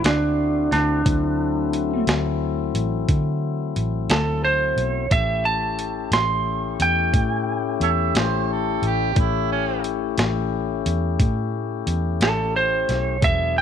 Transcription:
Already playing: tonewheel organ A3 C4 E4 F#4
0.04 fingered electric bass D2, lead electric guitar D4, snare, closed hi-hat
0.72 fingered electric bass D2, lead electric guitar D4, snare, closed hi-hat
1.05 fingered electric bass D2, tonewheel organ F#3 A3 C4 E4, kick, closed hi-hat
1.73 closed hi-hat
2.07 fingered electric bass D2, snare, closed hi-hat
2.74 fingered electric bass A1, closed hi-hat
3.09 fingered electric bass D3, kick, closed hi-hat
3.76 fingered electric bass A1, closed hi-hat
4.09 fingered electric bass D2, lead electric guitar A4, snare, closed hi-hat
4.44 lead electric guitar C5
4.77 fingered electric bass B1, closed hi-hat
5.10 fingered electric bass A1, tonewheel organ A3 C#4 E4 G4, lead electric guitar E5, kick, closed hi-hat
5.45 lead electric guitar A5
5.79 closed hi-hat
6.11 fingered electric bass A1, lead electric guitar C6, snare, closed hi-hat
6.79 fingered electric bass E2, lead electric guitar G5, closed hi-hat
7.14 fingered electric bass A2, kick, closed hi-hat
7.80 fingered electric bass E2, harmonica A4 C#5 E5, closed hi-hat
8.15 fingered electric bass A1, harmonica C5, snare, closed hi-hat
8.53 harmonica A4
8.82 fingered electric bass A1, closed hi-hat
8.87 harmonica G4
9.15 fingered electric bass A1, tonewheel organ A3 C#4 E4 G4, kick, closed hi-hat
9.20 harmonica E4
9.52 harmonica C#4
9.84 closed hi-hat
10.18 fingered electric bass A1, snare, closed hi-hat
10.86 fingered electric bass E2, closed hi-hat
11.19 fingered electric bass A2, kick, closed hi-hat
11.87 fingered electric bass E2, closed hi-hat
12.20 fingered electric bass A1, lead electric guitar A4, snare, closed hi-hat
12.56 lead electric guitar C5
12.89 fingered electric bass B1, snare, closed hi-hat
13.21 fingered electric bass E1, tonewheel organ F#3 B3 D4 G#4, lead electric guitar E5, kick, closed hi-hat
13.58 lead electric guitar G5

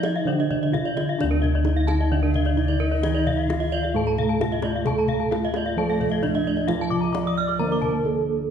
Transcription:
Already playing: bronze metallophone F3 D#4, kettle gongs F4
0.03 bronze metallophone D#5, kendang high
0.16 bronze metallophone F5, kendang slap
0.25 kettle gongs D3, bronze metallophone D3 D4 D5
0.39 bronze metallophone D#5, kendang slap
0.51 bronze metallophone D5, kendang low
0.63 bronze metallophone D#5, kendang slap
0.72 kettle gongs D#4, bronze metallophone F4 F5, kendang high, kendang low
0.85 bronze metallophone D5, kendang slap
0.97 bronze metallophone D#5, kendang high
1.09 bronze metallophone F5, kendang slap
1.18 bronze metallophone D3 D4 D5, kettle gongs D4, kendang high, kendang low
1.23 kettle gongs D2
1.31 bronze metallophone A#4, kendang slap
1.42 bronze metallophone D#5, kendang low
1.55 bronze metallophone D5, kendang slap
1.64 bronze metallophone D#4 D#5, kettle gongs D#4, kendang high
1.76 bronze metallophone F5, kendang slap
1.87 bronze metallophone A5, kendang high
1.96 xiao D5
2.00 bronze metallophone D#5, kendang slap
2.11 bronze metallophone D3 D4 D5
2.18 xiao F5
2.22 bronze metallophone A#4, kendang slap
2.34 bronze metallophone D#5, kendang low
2.45 bronze metallophone D5, kendang slap
2.57 kettle gongs D#4, bronze metallophone D#4 D#5, xiao D5, kendang low
2.68 bronze metallophone D5, kendang slap
2.80 bronze metallophone A#4, xiao D#5
2.91 bronze metallophone D5, kendang slap
3.03 bronze metallophone D#3 D#4 D#5, kettle gongs D#4, kendang high, kendang low
3.15 bronze metallophone D5, kendang slap
3.27 bronze metallophone F5, kendang low
3.33 xiao E5
3.37 bronze metallophone D#5, kendang slap
3.45 kettle gongs D#4, xiao F5
3.50 bronze metallophone F4 F5, kendang high
3.60 bronze metallophone D#5
3.72 bronze metallophone D5
3.83 bronze metallophone F5, kendang slap
3.94 kettle gongs A2, bronze metallophone A3 A4 A5
4.07 bronze metallophone A#5, kendang slap
4.18 bronze metallophone F5, kendang low
4.29 bronze metallophone A5, kendang slap
4.40 kettle gongs D#4, bronze metallophone F4 F5, kendang high, kendang low
4.52 bronze metallophone D#5, kendang slap
4.62 bronze metallophone D5, kendang high
4.75 bronze metallophone F5, kendang slap
4.85 bronze metallophone A3 A4 A5, kettle gongs A4, kendang high, kendang low
4.98 bronze metallophone A#5, kendang slap
5.08 bronze metallophone F5, kendang low
5.20 bronze metallophone A5, kendang slap
5.31 kettle gongs D#4, bronze metallophone F4 F5, kendang high
5.43 bronze metallophone D#5, kendang slap
5.54 bronze metallophone D5, kendang high
5.65 xiao D#5, bronze metallophone F5, kendang slap
5.73 kettle gongs F3, xiao D5
5.77 bronze metallophone A3 A4 A5
5.89 bronze metallophone F5, kendang slap
6.00 bronze metallophone D5, kendang low
6.10 bronze metallophone D#5, xiao F5, kendang slap
6.23 bronze metallophone D4 D5, kettle gongs D#4, kendang low
6.27 xiao E5
6.35 bronze metallophone D#5, kendang slap
6.39 xiao D#5
6.47 bronze metallophone D5
6.57 bronze metallophone D#5, kendang slap
6.68 bronze metallophone F3 F4 F5, kettle gongs F4, xiao D5, kendang high, kendang low
6.80 bronze metallophone A5, kendang slap
6.87 xiao D5, bronze metallophone D6
6.91 kendang low
7.01 xiao D#5, bronze metallophone A#5, kendang slap
7.13 kettle gongs D#4, bronze metallophone D5 D6, kendang high
7.25 xiao D#5, bronze metallophone D#6, kendang slap
7.38 xiao D5, bronze metallophone F6
7.47 bronze metallophone D6, kendang slap
7.59 kettle gongs D3, bronze metallophone A#3 A#4 A#5
7.71 bronze metallophone D6, kendang slap
7.82 bronze metallophone A5, kendang low
8.04 kettle gongs D#4, bronze metallophone A4

